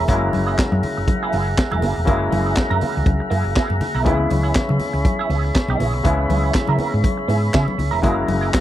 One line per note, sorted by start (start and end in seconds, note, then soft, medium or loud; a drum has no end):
0.00 8.00 G#4 medium
0.00 8.00 E5 medium
0.08 0.29 F#1 loud
0.08 2.03 C#3 medium
0.08 2.03 F#3 medium
0.08 2.04 G#3 medium
0.08 0.29 A#3 medium
0.08 2.04 A#3 medium
0.08 0.22 E4 medium
0.08 2.05 E4 medium
0.08 0.21 G#4 medium
0.08 4.02 F#5 medium
0.08 4.02 A#5 medium
0.08 kick loud
0.08 closed hi-hat medium
0.08 muted conga soft
0.08 low conga medium
0.22 muted clean electric guitar stroke soft
0.33 0.54 F#1 medium
0.33 muted clean electric guitar stroke soft
0.33 open hi-hat medium
0.33 muted conga soft
0.33 high conga medium
0.47 0.57 A#3 medium
0.47 0.57 E4 medium
0.47 0.58 G#4 medium
0.58 muted clean electric guitar stroke soft
0.58 muted fingered electric bass stroke soft
0.58 kick loud
0.58 snare medium
0.58 clap medium
0.58 closed hi-hat medium
0.58 muted conga soft
0.72 0.81 F#2 loud
0.72 muted clean electric guitar stroke soft
0.72 high conga medium
0.83 open hi-hat medium
0.83 muted conga soft
0.83 low conga medium
0.97 1.06 F#1 medium
0.97 muted clean electric guitar stroke soft
1.08 muted clean electric guitar stroke soft
1.08 kick loud
1.08 closed hi-hat medium
1.08 muted conga soft
1.08 high conga medium
1.23 1.32 A#3 medium
1.23 1.33 E4 medium
1.23 1.33 G#4 medium
1.33 1.53 F#1 loud
1.33 1.51 A#3 medium
1.33 1.48 E4 medium
1.33 1.47 G#4 medium
1.33 open hi-hat medium
1.33 muted conga soft
1.48 muted clean electric guitar stroke medium
1.57 muted clean electric guitar stroke soft
1.57 kick loud
1.57 snare loud
1.57 clap medium
1.57 closed hi-hat medium
1.57 muted conga soft
1.71 1.84 E1 medium
1.71 1.81 A#3 medium
1.71 1.82 E4 medium
1.71 1.83 G#4 medium
1.71 high conga medium
1.82 1.94 F#1 medium
1.82 2.00 A#3 medium
1.82 1.96 E4 medium
1.82 1.95 G#4 medium
1.82 snare soft
1.82 open hi-hat medium
1.82 muted conga soft
1.82 low conga medium
1.97 2.07 E1 medium
1.97 muted clean electric guitar stroke soft
2.05 2.27 F#1 loud
2.05 4.01 C#3 medium
2.05 4.02 F#3 medium
2.05 4.02 G#3 medium
2.05 2.28 A#3 medium
2.05 4.02 A#3 medium
2.05 2.21 E4 medium
2.05 4.03 E4 medium
2.05 2.20 G#4 medium
2.05 kick loud
2.05 closed hi-hat medium
2.05 low conga medium
2.22 muted clean electric guitar stroke soft
2.31 2.53 F#1 loud
2.31 2.46 A#3 medium
2.31 2.45 E4 medium
2.31 2.45 G#4 medium
2.31 open hi-hat medium
2.31 muted conga soft
2.31 high conga medium
2.46 2.55 A#3 medium
2.46 2.55 E4 medium
2.46 2.56 G#4 medium
2.56 kick loud
2.56 snare medium
2.56 clap medium
2.56 closed hi-hat medium
2.56 muted conga soft
2.70 2.80 F#2 medium
2.70 2.80 A#3 medium
2.70 2.81 E4 medium
2.70 2.82 A#4 medium
2.70 high conga medium
2.81 2.99 A#3 medium
2.81 2.96 E4 medium
2.81 2.96 A#4 medium
2.81 open hi-hat medium
2.81 muted conga soft
2.81 low conga medium
2.96 3.05 C#2 medium
2.96 muted clean electric guitar stroke soft
3.06 3.17 C#2 loud
3.06 muted clean electric guitar stroke soft
3.06 kick loud
3.06 closed hi-hat medium
3.06 muted conga soft
3.06 high conga medium
3.20 muted clean electric guitar stroke medium
3.30 3.43 F#2 medium
3.30 3.51 A#3 medium
3.30 3.45 E4 medium
3.30 3.45 G#4 medium
3.30 open hi-hat medium
3.45 3.54 F#1 medium
3.45 muted clean electric guitar stroke soft
3.56 3.77 A#3 medium
3.56 3.70 E4 medium
3.56 3.69 G#4 medium
3.56 kick loud
3.56 snare medium
3.56 clap medium
3.56 closed hi-hat medium
3.70 3.79 F#2 medium
3.70 muted clean electric guitar stroke soft
3.70 high conga medium
3.81 muted clean electric guitar stroke soft
3.81 snare soft
3.81 open hi-hat medium
3.81 muted conga soft
3.81 low conga medium
3.95 4.06 B1 medium
3.95 4.05 A#3 medium
3.95 4.05 E4 medium
3.95 4.07 A#4 medium
4.04 4.26 C#2 loud
4.04 6.00 C#3 medium
4.04 6.00 E3 medium
4.04 6.01 G#3 medium
4.04 4.26 B3 medium
4.04 6.01 B3 medium
4.04 4.20 E4 medium
4.04 6.02 E4 medium
4.04 4.18 G#4 medium
4.04 8.00 C#5 medium
4.04 8.00 B5 medium
4.04 kick loud
4.04 closed hi-hat medium
4.04 muted conga soft
4.04 low conga medium
4.20 muted clean electric guitar stroke soft
4.30 4.51 C#2 medium
4.30 muted clean electric guitar stroke soft
4.30 open hi-hat medium
4.30 muted conga soft
4.30 high conga medium
4.43 4.53 B3 soft
4.43 4.54 E4 medium
4.43 4.55 G#4 medium
4.55 muted clean electric guitar stroke soft
4.55 kick loud
4.55 snare loud
4.55 clap medium
4.55 closed hi-hat medium
4.55 muted conga soft
4.69 4.79 C#3 medium
4.69 muted clean electric guitar stroke soft
4.69 high conga medium
4.80 open hi-hat medium
4.80 muted conga soft
4.80 low conga medium
4.93 5.03 C#2 medium
4.93 muted clean electric guitar stroke soft
5.05 muted clean electric guitar stroke soft
5.05 kick loud
5.05 closed hi-hat medium
5.05 high conga medium
5.19 5.29 B3 medium
5.19 5.30 E4 medium
5.19 5.31 G#4 medium
5.30 5.50 C#2 medium
5.30 5.48 B3 medium
5.30 5.45 E4 medium
5.30 5.43 G#4 medium
5.30 open hi-hat medium
5.30 muted conga soft
5.45 muted clean electric guitar stroke soft
5.55 muted clean electric guitar stroke soft
5.55 kick loud
5.55 snare loud
5.55 clap medium
5.55 closed hi-hat medium
5.68 5.78 B1 loud
5.68 5.79 B3 medium
5.68 5.80 E4 medium
5.68 5.81 G#4 medium
5.68 high conga medium
5.80 5.93 A#1 medium
5.80 5.98 B3 medium
5.80 5.94 E4 medium
5.80 5.93 G#4 medium
5.80 snare soft
5.80 open hi-hat medium
5.80 muted conga soft
5.80 low conga medium
5.93 6.03 B1 medium
5.93 muted clean electric guitar stroke soft
6.04 6.25 C#2 loud
6.04 7.99 C#3 medium
6.04 8.00 E3 medium
6.04 8.00 G#3 medium
6.04 6.26 B3 medium
6.04 8.00 B3 medium
6.04 6.19 E4 medium
6.04 8.01 E4 medium
6.04 6.18 G#4 loud
6.04 kick loud
6.04 closed hi-hat medium
6.04 low conga medium
6.19 muted clean electric guitar stroke soft
6.29 6.50 C#2 loud
6.29 6.44 B3 medium
6.29 6.44 E4 medium
6.29 6.42 G#4 medium
6.29 open hi-hat medium
6.29 muted conga soft
6.29 high conga medium
6.44 6.54 B3 soft
6.44 6.54 E4 medium
6.44 6.55 G#4 medium
6.54 muted clean electric guitar stroke soft
6.54 kick loud
6.54 snare loud
6.54 clap medium
6.54 closed hi-hat medium
6.54 muted conga soft
6.67 6.77 C#3 medium
6.67 6.78 B3 medium
6.67 6.80 E4 medium
6.67 6.80 A#4 medium
6.67 high conga medium
6.79 6.97 B3 medium
6.79 6.94 E4 medium
6.79 6.94 A#4 medium
6.79 open hi-hat medium
6.79 muted conga soft
6.79 low conga medium
6.94 7.02 G#2 medium
6.94 muted clean electric guitar stroke soft
7.04 muted clean electric guitar stroke soft
7.04 kick loud
7.04 closed hi-hat medium
7.04 muted conga soft
7.04 high conga medium
7.18 muted clean electric guitar stroke soft
7.28 7.49 G#2 medium
7.28 7.49 B3 medium
7.28 7.42 E4 medium
7.28 7.41 G#4 medium
7.28 open hi-hat medium
7.28 muted conga soft
7.42 muted clean electric guitar stroke soft
7.53 7.65 C#3 loud
7.53 7.74 B3 medium
7.53 7.67 E4 medium
7.53 7.66 G#4 loud
7.53 kick loud
7.53 snare loud
7.53 clap medium
7.53 closed hi-hat medium
7.53 muted conga soft
7.67 muted clean electric guitar stroke medium
7.67 high conga medium
7.78 7.90 C#2 medium
7.78 muted clean electric guitar stroke soft
7.78 open hi-hat medium
7.78 muted conga soft
7.78 low conga medium
7.91 8.04 E1 medium
7.91 8.02 B3 medium
7.91 8.02 E4 medium
7.91 8.04 A#4 medium
8.02 8.24 F#1 loud
8.02 8.61 C#3 medium
8.02 8.61 F#3 medium
8.02 8.61 G#3 medium
8.02 8.24 A#3 medium
8.02 8.61 A#3 medium
8.02 8.16 E4 medium
8.02 8.61 E4 medium
8.02 8.15 G#4 loud
8.02 8.61 G#4 medium
8.02 8.61 E5 medium
8.02 8.61 F#5 medium
8.02 8.61 A#5 medium
8.02 kick loud
8.02 closed hi-hat medium
8.02 muted conga soft
8.02 low conga medium
8.17 muted clean electric guitar stroke soft
8.27 8.49 F#1 medium
8.27 muted clean electric guitar stroke soft
8.27 open hi-hat medium
8.27 muted conga soft
8.27 high conga medium
8.41 8.51 A#3 medium
8.41 8.51 E4 medium
8.41 8.52 G#4 medium
8.52 muted clean electric guitar stroke soft
8.52 muted fingered electric bass stroke soft
8.52 kick loud
8.52 snare medium
8.52 clap medium
8.52 closed hi-hat medium
8.52 muted conga soft